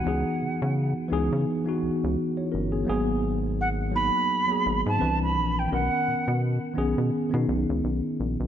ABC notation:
X:1
M:4/4
L:1/16
Q:"Swing 16ths" 1/4=85
K:C#dor
V:1 name="Flute"
f4- f z8 z3 | z4 f2 b4- b =a2 b2 =g | f4 z12 |]
V:2 name="Tine electric piano"
z12 z [Ec] [CA] [B,G]- | [B,G] z12 z3 | z16 |]
V:3 name="Tine electric piano"
[E,B,DG]4- [E,B,DG] z [E,B,DG]3 [E,B,DF]6 z | [F,A,B,G]4- [F,A,B,G] z [F,A,B,D]3 [F,A,B,G]3 [D,E,=C=DB]3 z | [D,B,CA]4- [D,B,CA] z [D,B,CG]3 [D,B,CD]6 z |]
V:4 name="Analog synth bass" clef=bass
C,, z C, C,2 z C,, C, z2 C,, C,, z2 =G,,,2 | G,,,6- G,,, z3 G,,, G,, =C,,2 A,,,2 | B,,, z B,, B,,2 z B,,, B,, z B,, B,,, C,, B,,, z A,,, B,,, |]